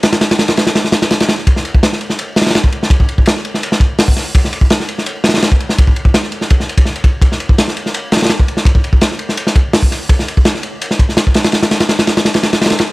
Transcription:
\new DrumStaff \with { instrumentName = "Drums" } \drummode { \time 4/4 \tempo 4 = 167 <cymr sn>16 <cymr sn>16 <cymr sn>16 <cymr sn>16 <cymr sn>16 <cymr sn>16 <cymr sn>16 <cymr sn>16 <cymr sn>16 sn16 <cymr sn>16 <cymr sn>16 <cymr sn>16 <cymr sn>16 <cymr sn>16 sn16 | <bd cymr>16 sn16 cymr16 bd16 <cymr sn>16 sn16 cymr16 sn16 cymr8 <cymr sn>32 <cymr sn>32 <cymr sn>32 <cymr sn>32 <cymr sn>16 bd16 cymr16 sn16 | <bd cymr>16 bd16 cymr16 bd16 <cymr sn>16 sn16 cymr16 sn16 cymr16 sn16 <bd cymr>8 <hho sn>16 bd16 <cymr sn>8 | <bd cymr>16 sn16 cymr16 bd16 <cymr sn>16 sn16 cymr16 sn16 cymr8 <cymr sn>32 <cymr sn>32 <cymr sn>32 <cymr sn>32 <cymr sn>16 bd16 cymr16 sn16 |
<bd cymr>16 bd16 cymr16 bd16 <cymr sn>16 sn16 cymr16 sn16 <bd cymr>16 sn16 cymr16 <bd cymr>16 sn16 cymr16 <bd cymr>8 | <bd cymr>16 sn16 cymr16 bd16 <cymr sn>16 sn16 cymr16 sn16 cymr8 <cymr sn>32 <cymr sn>32 <cymr sn>32 <cymr sn>32 <cymr sn>16 bd16 cymr16 sn16 | <bd cymr>16 bd16 cymr16 bd16 <cymr sn>16 sn16 cymr16 sn16 cymr16 sn16 <bd cymr>8 <hho sn>16 bd16 <cymr sn>8 | <bd cymr>16 sn16 cymr16 bd16 <cymr sn>16 sn16 cymr8 cymr16 sn16 <bd cymr>16 sn16 <cymr sn>16 bd16 <cymr sn>16 <cymr sn>16 |
<cymr sn>16 <cymr sn>16 <cymr sn>16 <cymr sn>16 <cymr sn>16 <cymr sn>16 <cymr sn>16 <cymr sn>16 <cymr sn>16 <cymr sn>16 <cymr sn>16 <cymr sn>16 <cymr sn>32 <cymr sn>32 <cymr sn>16 <cymr sn>8 | }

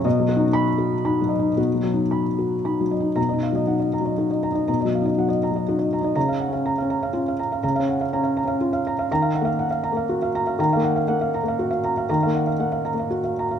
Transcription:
<<
  \new Staff \with { instrumentName = "Felt piano" } { \time 3/4 \key b \lydian \tempo 4 = 120 << { r4 b''4 r4 | r2. | ais''8 r2 r8 | r2. |
ais''8 r2 r8 | r2. | ais''8 r2 r8 | r2. |
r2. | } \\ { dis''8 fis'8. r16 fis'8 b''8 dis''8 | fis'8 fis8 b''8 fis'8 b''8 dis''8 | r16 dis''16 eis''16 dis''16 fis''16 dis''16 ais''16 dis''16 fis'16 dis''16 ais''16 dis''16 | ais''16 dis''16 eis''16 dis''16 fis''16 dis''16 ais''16 dis''16 fis'16 dis''16 ais''16 dis''16 |
r16 eis''16 fis''16 eis''16 ais''16 eis''16 ais''16 eis''16 eis'16 eis''16 ais''16 eis''16 | ais''16 eis''16 fis''16 eis''16 ais''16 eis''16 ais''16 eis''16 eis'16 eis''16 ais''16 eis''16 | r16 eis''16 fis''16 eis''16 fis''16 eis''16 ais''16 eis''16 fis'16 eis''16 ais''16 eis''16 | ais''16 eis''16 fis''16 eis''16 fis''16 eis''16 ais''16 eis''16 fis'16 eis''16 ais''16 eis''16 |
ais''16 eis''16 fis''16 eis''16 fis''16 eis''16 ais''16 eis''16 fis'16 eis''16 ais''16 eis''16 | } >> }
  \new Staff \with { instrumentName = "Felt piano" } { \time 3/4 \key b \lydian \tuplet 3/2 { b,8 fis8 dis'8 } r4 \tuplet 3/2 { dis'8 fis8 dis'8 } | \tuplet 3/2 { b,8 fis8 dis'8 } r4 \tuplet 3/2 { dis'8 fis8 dis'8 } | \tuplet 3/2 { b,8 dis'8 fis8 dis'4 fis8 dis'4 dis'8 } | \tuplet 3/2 { b,8 fis8 dis'8 fis4 fis8 dis'4 dis'8 } |
\tuplet 3/2 { cis4 cis'8~ cis'8 cis'4 } cis'8 r8 | \tuplet 3/2 { cis8 cis'4 cis'4 cis'8 } r4 | \tuplet 3/2 { dis4 ais8~ ais8 r8 ais8 } r4 | \tuplet 3/2 { dis8 ais4 ais4 ais8 } r4 |
\tuplet 3/2 { dis8 ais4 ais4 ais8 } r4 | }
>>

